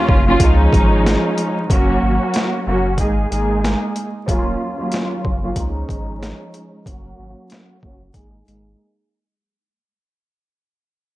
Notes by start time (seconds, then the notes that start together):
Already playing: D#2 F#3 A#3 C#4 F4
0.09 F#1, kick
0.26 D#2 F#3 A#3 C#4 F4
0.40 C#2 F3 G#3 C#4 D#4, kick, closed hi-hat
0.73 G#1, kick, closed hi-hat
1.06 snare, closed hi-hat
1.38 closed hi-hat
1.69 F#1 F#3 A#3 C#4 F#4, kick, closed hi-hat
2.02 G#1
2.34 snare, closed hi-hat
2.66 F#1 F#3 A#3 C#4 F#4
2.97 G#1 G#3 A#3 D#4 G#4, kick, closed hi-hat
3.30 G#1 G#3 A#3 D#4 G#4, closed hi-hat
3.65 snare, closed hi-hat
3.96 closed hi-hat
4.26 D#1 D#2 F#3 A#3 C#4 F4, kick, closed hi-hat
4.77 D#2 F#3 A#3 C#4 F4
4.92 snare, closed hi-hat
5.25 F#1, kick
5.42 D#2 F#3 A#3 C#4 F4
5.56 C#2 F3 G#3 C#4 D#4, kick, closed hi-hat
5.89 G#1, kick, closed hi-hat
6.23 snare, closed hi-hat
6.54 closed hi-hat
6.86 F#1 F#3 A#3 C#4 F#4, kick, closed hi-hat
7.19 G#1
7.50 snare, closed hi-hat
7.82 F#1 F#3 A#3 C#4 F#4, kick
8.13 G#1 G#3 A#3 D#4 G#4, kick, closed hi-hat
8.46 G#1 G#3 A#3 D#4 G#4, closed hi-hat